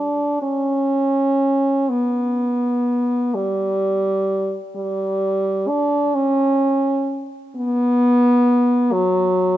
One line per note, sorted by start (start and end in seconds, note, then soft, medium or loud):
0.00 0.41 D4 medium
0.42 1.91 C#4 medium
1.90 3.36 B3 medium
3.35 4.59 G3 medium
4.76 5.70 G3 medium
5.68 6.16 D4 medium
6.15 7.29 C#4 medium
7.56 8.94 B3 medium
8.92 9.57 F#3 medium